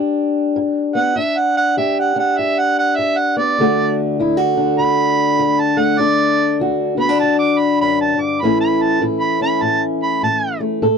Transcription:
Already playing: steel-string acoustic guitar G2 D4 G4
0.56 steel-string acoustic guitar G2
0.95 steel-string acoustic guitar B3, harmonica F#5
1.16 steel-string acoustic guitar G2 D4, harmonica E5
1.38 harmonica F#5
1.57 harmonica F#5
1.77 steel-string acoustic guitar G2 G4, harmonica E5
2.00 harmonica F#5
2.16 steel-string acoustic guitar D4, harmonica F#5
2.38 steel-string acoustic guitar G2, harmonica E5
2.59 harmonica F#5
2.79 harmonica F#5
2.96 steel-string acoustic guitar G2, harmonica E5
3.18 harmonica F#5
3.37 steel-string acoustic guitar B3, harmonica D5
3.59 steel-string acoustic guitar D2 D3 A3 D4 F#4
4.20 steel-string acoustic guitar D2 E4
4.37 steel-string acoustic guitar F#4
4.57 steel-string acoustic guitar D4
4.79 steel-string acoustic guitar D2, harmonica B5
5.39 steel-string acoustic guitar D2
5.60 harmonica A5
5.77 steel-string acoustic guitar A3, harmonica F#5
5.99 steel-string acoustic guitar D2 D4, harmonica D5
6.60 steel-string acoustic guitar D2 F#4
6.97 steel-string acoustic guitar B3, harmonica B5
7.09 steel-string acoustic guitar D4
7.20 steel-string acoustic guitar D2, harmonica A5
7.39 harmonica D6
7.59 harmonica B5
7.81 steel-string acoustic guitar F#2, harmonica B5
8.01 harmonica A5
8.18 steel-string acoustic guitar G2, harmonica D6
8.41 steel-string acoustic guitar A2 E3 A3 C#4 E4, harmonica B5
8.60 harmonica B5
8.82 harmonica A5
9.02 steel-string acoustic guitar A2 E4
9.20 harmonica B5
9.41 steel-string acoustic guitar C#4, harmonica B5
9.62 steel-string acoustic guitar A2, harmonica A5
10.03 harmonica B5
10.23 steel-string acoustic guitar A2, harmonica A5
10.60 steel-string acoustic guitar A3
10.82 steel-string acoustic guitar A2 A4

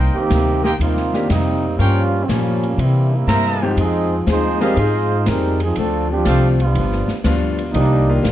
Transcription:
Already playing: upright bass C2, steel-string acoustic guitar C3 G3 A#3 D#4, trumpet section A#4 C5 D#5 G5
0.14 trombone section D#3 A#3 C4 G4, muted upright bass stroke
0.30 upright bass D2, steel-string acoustic guitar C3 G3 A#3 D#4, snare, hi-hat pedal, ride
0.63 trombone section D#3 A#3 C4 G4, trumpet section A#4 C5 D#5 G5, snare
0.79 upright bass D#2, steel-string acoustic guitar C3 G3 A#3 D#4, trombone section A#3 C4 D#4 F4, ride
0.97 snare
1.13 grand piano D#3 A#3 C4 D4 G4, snare
1.30 upright bass F2, steel-string acoustic guitar C3 G3 A#3 D#4, trombone section G3 A#3 C4 D#4, snare, hi-hat pedal, ride
1.78 steel-string acoustic guitar G2 F3 A#3 C#4, upright bass G2, trombone section G3 A#3 C#4 F4, trumpet section A#4 C#5 F5 G5, ride
2.24 steel-string acoustic guitar G2, trombone section F3 C4
2.28 upright bass A#2, steel-string acoustic guitar F3 A#3 C#4, trombone section G3 A#3 C#4, snare, hi-hat pedal, ride
2.63 ride
2.78 steel-string acoustic guitar C3 G3 A#3 E4, upright bass C3, trombone section E3 G3 A#3 C4, ride
3.14 trombone section G3 A#3 C4 E4
3.27 upright bass G2, steel-string acoustic guitar C3 G3 A#3 E4, trumpet section A#4 C5 E5 A#5, snare, hi-hat pedal, ride
3.62 grand piano F3 G#3 C4 D#4 G4
3.76 upright bass F2, steel-string acoustic guitar F3 C4 D#4 G#4, trombone section F3 G#3 C4 D#4, ride
4.26 upright bass D#2, steel-string acoustic guitar F3 C4 D#4 G#4, trombone section G#3 D#4 F4 C5, snare, hi-hat pedal, ride
4.60 grand piano F3 G#3 C4 D#4 G4, trombone section G3 C4 D#4 A#4, trumpet section G#4 C5 D#5 F5, ride
4.76 upright bass G#2, steel-string acoustic guitar F3 C4 D#4 G#4, trombone section G#3 D#4 F4 C5, ride
5.26 upright bass F2, steel-string acoustic guitar F3 C4 D#4 G#4, trombone section G3 C4 D#4 A#4, snare, hi-hat pedal, ride
5.60 trombone section F3 C4 D#4 G#4, ride
5.75 upright bass D2, steel-string acoustic guitar D3 A3 C4, trombone section A4, ride
5.80 trombone section F3 C4 D4, steel-string acoustic guitar F4
6.11 trombone section F3 C4 D4 G4
6.25 upright bass C2, steel-string acoustic guitar D3 A3 C4, trumpet section A4 C5 D5 F5, snare, hi-hat pedal, ride
6.30 steel-string acoustic guitar F4
6.60 trombone section G3 B3 D4 F4, ride
6.75 upright bass G1, steel-string acoustic guitar G2 F3, ride
6.79 steel-string acoustic guitar B3 D4
6.92 snare
7.08 muted upright bass stroke, snare
7.24 upright bass D2, steel-string acoustic guitar G2 F3 B3 D4, grand piano F3 G3 B3 D4 F4, snare, hi-hat pedal, ride
7.58 ride
7.72 upright bass C2, steel-string acoustic guitar C3 F3 A#3 D#4, trombone section G3 A#3 D4 D#4, ride
8.09 grand piano D#3 G3 A#3 D4 F4
8.22 upright bass A#1, steel-string acoustic guitar C3 F3 A#3 D#4, snare, hi-hat pedal, ride

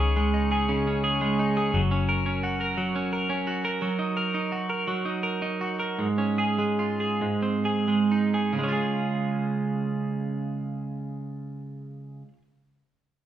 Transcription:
Already playing: fingered electric bass C#2, clean electric guitar C#3 C#4, steel-string acoustic guitar D#3 G#3 G#4, tonewheel organ G#4 C#5 D#5 C#6
0.00 clean electric guitar G#4
0.16 clean electric guitar G#3
0.34 clean electric guitar D#4
0.52 clean electric guitar G#4
0.69 clean electric guitar C#3
0.87 clean electric guitar C#4
1.04 clean electric guitar G#4
1.21 clean electric guitar G#3
1.39 clean electric guitar D#4
1.57 clean electric guitar G#4
1.74 fingered electric bass F#1, clean electric guitar F#3
1.91 clean electric guitar C#4
2.09 clean electric guitar A#4
2.26 clean electric guitar C#4
2.43 clean electric guitar F#4
2.61 clean electric guitar A#4
2.78 clean electric guitar F#3
2.96 clean electric guitar C#4
3.13 clean electric guitar A#4
3.30 clean electric guitar C#4
3.47 clean electric guitar F#4
3.65 clean electric guitar A#4
3.82 clean electric guitar F#3
3.99 clean electric guitar D#4
4.17 clean electric guitar A#4
4.34 clean electric guitar D#4
4.52 clean electric guitar F#4
4.70 clean electric guitar A#4
4.88 clean electric guitar F#3
5.05 clean electric guitar D#4
5.23 clean electric guitar A#4
5.42 clean electric guitar D#4
5.61 clean electric guitar F#4
5.80 clean electric guitar A#4
5.99 clean electric guitar G#2
6.18 clean electric guitar C#4
6.38 clean electric guitar G#4
6.59 clean electric guitar G#3
6.79 clean electric guitar F4
7.00 clean electric guitar G#4
7.21 clean electric guitar G#2
7.42 clean electric guitar C4
7.65 clean electric guitar G#4
7.88 clean electric guitar G#3
8.12 clean electric guitar D#4
8.34 clean electric guitar G#4
8.53 clean electric guitar C#3
8.59 clean electric guitar G#3
8.64 clean electric guitar C#4
8.68 clean electric guitar F4
8.72 clean electric guitar G#4

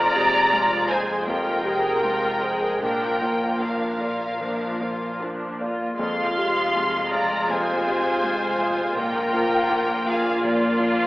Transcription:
Already playing: double bass section F1, felt piano F2, cello section F2, harp F2 F3 F4, viola section F3 F4, violin section D5 A#5
0.15 felt piano C3, viola section G#3 G#4, harp C5
0.52 viola section F3 F4, felt piano G#3, harp F4
0.89 harp G#3, viola section G#3 G#4, violin section C5 G#5, felt piano C5
1.26 felt piano F2, harp C3, viola section F3 F4, violin section A#4 G5
1.64 felt piano C3, viola section G#3 G#4, harp C5
2.02 viola section F3 F4, felt piano G#3, harp F4
2.42 viola section G#3 G#4, harp G#3, felt piano C5
2.81 double bass section A#1, felt piano A#2, cello section A#2, harp A#2, viola section F3 D4, violin section A#4 G5
3.21 felt piano F3, viola section A#3 F4, harp D5
3.60 viola section F3 D4, felt piano A#3, harp F4, violin section A#4 F5
4.00 viola section A#3 F4, harp A#3, felt piano D5
4.40 felt piano A#2, viola section F3 D4, harp F3
4.80 felt piano F3, viola section A#3 F4, harp D5
5.20 viola section F3 D4, felt piano A#3, harp F4
5.60 harp A#3, viola section A#3 F4, felt piano D5
5.98 double bass section F1, cello section F2, harp F2, felt piano F2, viola section G#3 F4, violin section F5 C6
6.37 felt piano C3, harp F5
6.75 felt piano G#3, harp F4
7.12 harp G#3, violin section D5 A#5, felt piano F5
7.49 felt piano F2, harp C3, violin section C5 G#5
7.86 felt piano C3, harp F5
8.23 felt piano G#3, harp F4
8.60 harp G#3, felt piano F5
8.96 double bass section A#1, cello section A#2, felt piano A#2, harp A#2, viola section A#3, violin section A#4 G5
9.33 felt piano F3, harp F5
9.70 felt piano A#3, harp F4
10.06 harp A#3, violin section G#4 F5, felt piano F5
10.43 felt piano A#2, harp F3, violin section F4 D5
10.79 felt piano F3, harp F5

